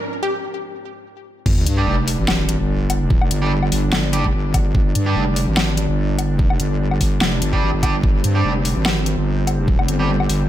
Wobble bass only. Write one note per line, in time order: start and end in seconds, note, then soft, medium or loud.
1.46 1.65 G1 loud
1.66 1.86 G2 loud
1.87 2.17 F1 loud
2.19 2.58 G#1 loud
2.60 3.20 G1 loud
3.21 3.29 F1 loud
3.31 3.70 G1 loud
3.72 4.15 G1 loud
4.15 4.32 F#1 loud
4.34 4.53 G1 loud
4.54 4.73 G1 loud
4.75 4.94 G1 loud
4.95 5.14 G2 loud
5.16 5.46 F1 loud
5.47 5.87 G#1 loud
5.89 6.31 G1 loud
6.31 6.48 F#1 loud
6.50 6.58 F1 loud
6.60 6.99 G1 loud
7.01 7.20 G1 loud
7.21 7.40 F1 medium
7.42 7.61 G1 medium
7.62 7.72 G#1 loud
7.74 8.02 G1 loud
8.03 8.22 G1 loud
8.24 8.43 G2 medium
8.45 8.74 F1 loud
8.76 9.16 G#1 loud
9.17 9.77 G1 loud
9.79 9.87 F1 loud
9.88 10.28 G1 loud
10.29 10.49 G1 loud